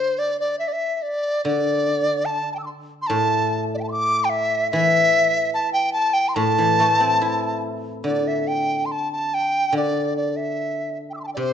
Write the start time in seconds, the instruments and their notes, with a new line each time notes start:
Already playing: guzheng D3, dizi C5
0.19 dizi D5
0.40 dizi D5
0.59 dizi E5
0.68 dizi D5
0.73 dizi E5
0.97 dizi E5
1.02 dizi D5
1.45 guzheng D3, dizi D5
2.25 dizi A5
2.52 dizi G5 A5
2.59 dizi E6
2.63 dizi C6 D6
3.02 dizi C6
3.07 guzheng A2, dizi A5
3.74 dizi D5 E5
3.81 dizi G5 A5
3.89 dizi C6 D6
4.24 dizi G5
4.30 dizi E5
4.71 guzheng E3, dizi E5
5.54 dizi A5
5.73 dizi G5
5.93 dizi A5
6.13 dizi G5
6.28 dizi C6
6.35 guzheng A2, dizi A5
6.58 guzheng E3
6.80 guzheng A3
7.00 guzheng C4
7.21 guzheng E4
8.04 guzheng D3, dizi D5
8.27 dizi E5
8.48 dizi G5
8.86 dizi C6
8.92 dizi A5
9.13 dizi A5
9.34 dizi G5
9.73 guzheng D3
9.77 dizi D5
10.17 dizi D5
10.36 dizi E5
11.10 dizi G5 E6
11.15 dizi D6
11.20 dizi A5 C6
11.27 dizi G5
11.34 guzheng C3, dizi D5
11.39 dizi C5